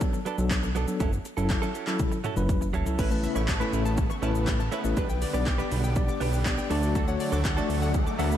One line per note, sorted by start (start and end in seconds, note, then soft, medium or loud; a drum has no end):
0.00 0.18 F#3 loud
0.00 0.18 B3 medium
0.00 0.19 D4 medium
0.00 0.19 A4 loud
0.00 kick loud
0.00 closed hi-hat medium
0.00 shaker medium
0.13 muted clean electric guitar stroke soft
0.13 shaker medium
0.25 0.42 F#3 medium
0.25 0.38 B3 medium
0.25 0.38 D4 medium
0.25 0.37 A4 medium
0.25 closed hi-hat soft
0.25 shaker soft
0.38 0.86 B1 medium
0.38 0.68 F#3 medium
0.38 0.68 B3 medium
0.38 0.68 D4 medium
0.38 0.68 A4 medium
0.38 muted clean electric guitar stroke soft
0.38 shaker medium
0.50 muted clean electric guitar stroke soft
0.50 kick loud
0.50 clap loud
0.50 closed hi-hat medium
0.50 shaker medium
0.63 muted clean electric guitar stroke medium
0.63 shaker medium
0.75 0.91 F#3 medium
0.75 0.88 B3 medium
0.75 0.87 D4 medium
0.75 0.86 A4 loud
0.75 closed hi-hat medium
0.75 shaker medium
0.87 1.00 F#3 medium
0.87 1.00 B3 medium
0.87 1.00 D4 medium
0.87 1.00 A4 medium
0.87 muted clean electric guitar stroke soft
0.87 shaker medium
1.00 1.19 F#1 loud
1.00 1.16 F#3 medium
1.00 1.12 C#4 medium
1.00 1.12 E4 medium
1.00 1.11 A4 medium
1.00 kick loud
1.00 closed hi-hat medium
1.00 shaker medium
1.12 muted clean electric guitar stroke soft
1.12 shaker medium
1.25 muted clean electric guitar stroke soft
1.25 closed hi-hat medium
1.25 shaker medium
1.37 1.56 F#1 medium
1.37 1.67 F#3 medium
1.37 1.48 F#3 medium
1.37 1.67 C#4 medium
1.37 1.49 C#4 medium
1.37 1.67 E4 medium
1.37 1.49 E4 medium
1.37 1.50 A4 medium
1.37 1.67 A4 loud
1.37 shaker medium
1.50 kick loud
1.50 clap loud
1.50 closed hi-hat medium
1.50 shaker medium
1.62 1.73 F#3 medium
1.62 1.74 C#4 medium
1.62 1.74 E4 medium
1.62 1.75 A4 loud
1.62 shaker medium
1.74 1.87 F#3 medium
1.74 1.87 C#4 medium
1.74 1.86 E4 medium
1.74 1.85 A4 medium
1.74 closed hi-hat soft
1.74 shaker soft
1.87 2.17 F#3 medium
1.87 2.17 C#4 medium
1.87 2.17 E4 medium
1.87 2.17 A4 loud
1.87 muted clean electric guitar stroke medium
1.87 clap medium
1.87 shaker medium
1.99 kick loud
1.99 closed hi-hat medium
1.99 high tom medium
1.99 shaker medium
2.12 muted clean electric guitar stroke medium
2.12 shaker medium
2.24 2.40 F#3 medium
2.24 2.37 C#4 medium
2.24 2.36 E4 medium
2.24 2.35 A4 medium
2.24 closed hi-hat soft
2.24 mid tom medium
2.24 shaker soft
2.36 2.84 F#1 medium
2.36 2.66 F#3 medium
2.36 2.66 C#4 medium
2.36 2.66 E4 medium
2.36 2.67 B4 medium
2.36 muted clean electric guitar stroke soft
2.36 mid tom medium
2.36 shaker medium
2.49 muted clean electric guitar stroke soft
2.49 kick loud
2.49 closed hi-hat medium
2.49 mid tom medium
2.49 shaker medium
2.61 muted clean electric guitar stroke soft
2.61 shaker medium
2.73 2.87 F#3 medium
2.73 2.86 C#4 loud
2.73 2.85 E4 loud
2.73 2.85 A4 loud
2.73 closed hi-hat medium
2.73 floor tom loud
2.73 shaker medium
2.86 2.99 F#3 medium
2.86 2.98 F#3 medium
2.86 2.99 C#4 medium
2.86 2.98 C#4 medium
2.86 2.99 E4 medium
2.86 2.98 E4 medium
2.86 2.98 A4 medium
2.86 2.99 A4 medium
2.86 floor tom medium
2.86 shaker medium
2.98 3.27 A1 loud
2.98 4.95 C#3 medium
2.98 3.14 A3 medium
2.98 4.95 A3 medium
2.98 6.67 B3 medium
2.98 3.11 C#4 medium
2.98 3.10 E4 medium
2.98 3.10 B4 loud
2.98 3.10 B4 medium
2.98 kick loud
2.98 closed hi-hat medium
2.98 crash loud
2.98 shaker medium
3.11 3.41 A3 medium
3.11 3.41 C#4 medium
3.11 3.41 E4 medium
3.11 3.41 B4 loud
3.11 3.23 A5 medium
3.11 muted clean electric guitar stroke medium
3.11 shaker medium
3.23 3.35 E5 medium
3.23 muted clean electric guitar stroke soft
3.23 closed hi-hat medium
3.23 shaker medium
3.35 3.64 A1 medium
3.35 3.47 A3 medium
3.35 3.47 C#4 medium
3.35 3.48 E4 medium
3.35 3.48 B4 medium
3.35 3.47 C#6 medium
3.35 shaker medium
3.48 3.60 A5 medium
3.48 muted clean electric guitar stroke soft
3.48 kick loud
3.48 clap loud
3.48 closed hi-hat medium
3.48 shaker medium
3.60 3.98 A3 loud
3.60 3.71 A3 medium
3.60 3.98 C#4 medium
3.60 3.72 C#4 medium
3.60 3.98 E4 medium
3.60 3.72 E4 medium
3.60 3.73 B4 medium
3.60 3.98 B4 loud
3.60 3.72 B6 medium
3.60 shaker medium
3.72 4.11 A1 medium
3.72 3.85 A3 medium
3.72 3.85 C#4 medium
3.72 3.85 E4 medium
3.72 3.84 B4 medium
3.72 closed hi-hat medium
3.72 shaker medium
3.85 3.97 A5 medium
3.85 muted clean electric guitar stroke soft
3.85 shaker medium
3.98 kick loud
3.98 closed hi-hat medium
3.98 shaker medium
4.10 4.22 C#6 medium
4.10 muted clean electric guitar stroke soft
4.10 shaker medium
4.22 4.70 A1 medium
4.22 4.38 A3 medium
4.22 4.60 A3 medium
4.22 4.60 C#4 medium
4.22 4.35 C#4 medium
4.22 4.60 E4 medium
4.22 4.34 E4 medium
4.22 4.60 B4 loud
4.22 4.34 B4 medium
4.22 4.34 A5 medium
4.22 closed hi-hat medium
4.22 shaker soft
4.35 muted clean electric guitar stroke soft
4.35 shaker medium
4.47 muted clean electric guitar stroke soft
4.47 kick loud
4.47 clap loud
4.47 closed hi-hat medium
4.47 shaker medium
4.59 4.71 A5 medium
4.59 muted clean electric guitar stroke soft
4.59 shaker medium
4.72 4.88 A3 medium
4.72 4.84 C#4 medium
4.72 4.84 E4 loud
4.72 4.83 B4 loud
4.72 4.84 E5 medium
4.72 closed hi-hat medium
4.72 shaker medium
4.84 4.94 A1 medium
4.84 4.97 A3 loud
4.84 4.97 C#4 medium
4.84 4.97 E4 medium
4.84 4.97 B4 loud
4.84 muted clean electric guitar stroke soft
4.84 shaker medium
4.96 5.25 B1 loud
4.96 5.13 B3 medium
4.96 5.09 D4 medium
4.96 5.08 G4 medium
4.96 5.08 B4 loud
4.96 5.08 B4 medium
4.96 kick loud
4.96 closed hi-hat medium
4.96 shaker medium
5.09 5.21 G5 medium
5.09 shaker medium
5.21 5.33 D5 medium
5.21 muted clean electric guitar stroke soft
5.21 open hi-hat medium
5.21 shaker medium
5.33 5.62 B1 medium
5.33 5.71 B3 loud
5.33 5.45 B3 medium
5.33 5.71 D4 medium
5.33 5.45 D4 medium
5.33 5.46 G4 medium
5.33 5.71 G4 medium
5.33 5.46 B4 medium
5.33 5.71 D5 loud
5.33 5.46 D6 medium
5.33 shaker medium
5.46 5.58 G5 medium
5.46 kick loud
5.46 clap loud
5.46 closed hi-hat medium
5.46 shaker medium
5.58 5.69 B3 medium
5.58 5.70 D4 medium
5.58 5.71 G4 medium
5.58 5.71 B4 medium
5.58 5.70 B6 medium
5.58 shaker medium
5.71 6.09 B1 medium
5.71 5.83 B3 medium
5.71 5.84 D4 medium
5.71 5.83 G4 medium
5.71 5.82 B4 medium
5.71 open hi-hat medium
5.71 shaker soft
5.83 5.95 G5 medium
5.83 muted clean electric guitar stroke soft
5.83 shaker medium
5.96 6.26 B3 medium
5.96 6.26 D4 medium
5.96 6.26 G4 medium
5.96 6.26 D5 loud
5.96 muted clean electric guitar stroke soft
5.96 kick loud
5.96 closed hi-hat medium
5.96 shaker medium
6.08 6.20 D6 medium
6.08 muted clean electric guitar stroke soft
6.08 shaker medium
6.20 6.59 B1 medium
6.20 6.34 B3 medium
6.20 6.33 D4 medium
6.20 6.33 G4 loud
6.20 6.32 B4 loud
6.20 6.32 G5 medium
6.20 open hi-hat medium
6.20 shaker soft
6.33 6.44 B3 medium
6.33 6.45 D4 medium
6.33 6.45 G4 medium
6.33 6.46 B4 medium
6.33 shaker medium
6.45 6.70 B3 medium
6.45 6.69 D4 medium
6.45 6.71 G4 medium
6.45 6.70 D5 medium
6.45 muted clean electric guitar stroke soft
6.45 kick loud
6.45 clap loud
6.45 closed hi-hat medium
6.45 shaker medium
6.58 6.70 G5 medium
6.58 muted clean electric guitar stroke soft
6.58 shaker medium
6.70 7.18 D2 loud
6.70 8.37 F#3 medium
6.70 6.83 A3 medium
6.70 8.37 A3 medium
6.70 7.00 A3 medium
6.70 7.00 D4 medium
6.70 6.83 D4 loud
6.70 7.00 F#4 medium
6.70 6.82 F#4 medium
6.70 6.81 A4 medium
6.70 6.82 D5 medium
6.70 7.01 D5 loud
6.70 open hi-hat medium
6.70 shaker medium
6.82 6.93 A3 medium
6.82 6.94 D4 medium
6.82 6.95 F#4 medium
6.82 6.95 A4 medium
6.82 shaker medium
6.95 7.11 A3 medium
6.95 7.07 D4 medium
6.95 7.07 F#4 medium
6.95 7.07 A4 medium
6.95 7.06 A4 loud
6.95 kick loud
6.95 closed hi-hat medium
6.95 riser medium
6.95 shaker medium
7.07 7.37 A3 medium
7.07 7.37 D4 medium
7.07 7.38 F#4 medium
7.07 7.38 C#5 loud
7.07 7.19 F#5 medium
7.07 muted clean electric guitar stroke medium
7.07 shaker medium
7.20 7.32 D5 medium
7.20 muted clean electric guitar stroke soft
7.20 open hi-hat medium
7.20 shaker medium
7.32 7.61 D2 loud
7.32 7.43 A3 medium
7.32 7.44 D4 medium
7.32 7.44 F#4 medium
7.32 7.45 A4 medium
7.32 7.44 D6 medium
7.32 shaker medium
7.45 7.56 F#5 medium
7.45 muted clean electric guitar stroke soft
7.45 kick loud
7.45 clap loud
7.45 closed hi-hat medium
7.45 shaker medium
7.57 7.94 A3 loud
7.57 7.68 A3 medium
7.57 7.94 D4 medium
7.57 7.69 D4 medium
7.57 7.95 F#4 medium
7.57 7.69 F#4 medium
7.57 7.70 A4 medium
7.57 7.95 D5 loud
7.57 7.69 A6 medium
7.57 shaker medium
7.69 8.07 D2 medium
7.69 7.82 A3 medium
7.69 7.82 D4 medium
7.69 7.81 F#4 medium
7.69 7.80 A4 medium
7.69 open hi-hat medium
7.69 shaker soft
7.82 7.94 F#5 medium
7.82 muted clean electric guitar stroke medium
7.82 shaker medium
7.94 kick loud
7.94 closed hi-hat medium
7.94 shaker medium
8.07 8.18 D6 medium
8.07 muted clean electric guitar stroke soft
8.07 shaker medium
8.19 8.37 D2 medium
8.19 8.35 A3 medium
8.19 8.37 A3 medium
8.19 8.37 D4 medium
8.19 8.31 D4 medium
8.19 8.37 F#4 medium
8.19 8.31 F#4 medium
8.19 8.30 A4 medium
8.19 8.37 E5 loud
8.19 8.31 F#5 medium
8.19 open hi-hat medium
8.19 shaker medium
8.31 muted clean electric guitar stroke soft
8.31 shaker medium